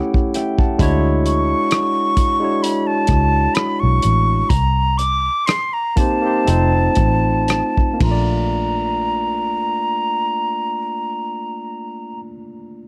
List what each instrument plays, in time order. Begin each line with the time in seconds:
Already playing: tine electric piano A3 C#4 E4 G4 C#5 F#5
0.14 kick
0.34 tine electric piano E5 G5, cross-stick, closed hi-hat
0.58 tine electric piano F#5 A5, kick
0.78 fingered electric bass D2, tine electric piano G#3 D4 E4 F#4, kick, closed hi-hat
0.82 tine electric piano C#5
1.26 flute C#6, closed hi-hat
1.71 cross-stick, closed hi-hat
2.17 kick, closed hi-hat
2.39 tine electric piano G#3 D4 E4 F#4
2.44 tine electric piano C#5
2.63 flute B5, closed hi-hat
2.87 flute A5
3.07 fingered electric bass C#2, kick, closed hi-hat
3.11 cross-stick
3.55 flute B5, cross-stick, closed hi-hat
3.80 fingered electric bass B1, flute C#6
4.02 fingered electric bass A1, closed hi-hat
4.49 fingered electric bass C2, flute A#5, kick, closed hi-hat
4.98 flute D6, closed hi-hat
5.46 flute C6, cross-stick, closed hi-hat
5.73 flute A#5
5.96 tine electric piano A#3 C4 D#4 G4, flute A5, kick, closed hi-hat
6.00 tine electric piano C5
6.22 tine electric piano A#3 C4 D#4 G4
6.27 tine electric piano C5
6.45 fingered electric bass F1, tine electric piano A3 C4 D#4 F4, closed hi-hat
6.50 tine electric piano C5
6.95 fingered electric bass A1, kick, closed hi-hat
7.48 cross-stick, closed hi-hat
7.77 kick
7.93 tine electric piano A#3
7.98 fingered electric bass A#1, tine electric piano D4, kick, ride
8.03 tine electric piano F4, flute A#5
8.07 tine electric piano A3
8.11 tine electric piano D5